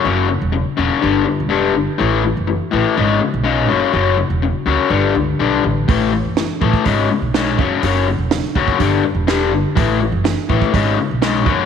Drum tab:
HH |----------------|----------------|----------------|o---o---o---o---|
SD |----------------|----------------|----------------|----o-------o---|
BD |----------------|----------------|----------------|o-----ooo-----o-|

HH |o---o---o---o---|o---o---o---o---|
SD |----o-------o---|----o-------o---|
BD |------ooo-------|o-----ooo-----o-|